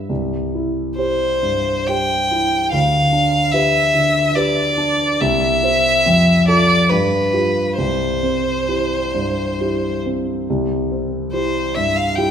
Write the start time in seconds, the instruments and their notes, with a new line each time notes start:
Already playing: grand piano G2 G4 B4
0.09 grand piano C2
0.55 grand piano E4
0.97 grand piano G4 C5, violin C5
1.43 grand piano G2
1.87 grand piano G4 C5, violin G5
2.31 grand piano E4
2.71 grand piano D2, violin F5
3.13 grand piano D4
3.51 grand piano G4 B4, violin E5
3.95 grand piano D3
4.35 grand piano G4 B4, violin D5
4.78 grand piano D4
5.21 grand piano C2, violin E5
5.63 grand piano G4 C5
6.06 grand piano F2
6.48 grand piano F4 A4, violin D5
6.90 grand piano G2, violin B4
7.33 grand piano F4 G4
7.77 grand piano C2, violin C5
8.23 grand piano C4
8.69 grand piano E4 G4
9.15 grand piano G2
9.60 grand piano E4 G4
10.06 grand piano C4
10.50 grand piano C2
10.91 grand piano C4
11.33 grand piano E4 G4, violin C5
11.75 grand piano G2, violin E5
11.96 violin F5
12.15 grand piano E4 G4, violin G5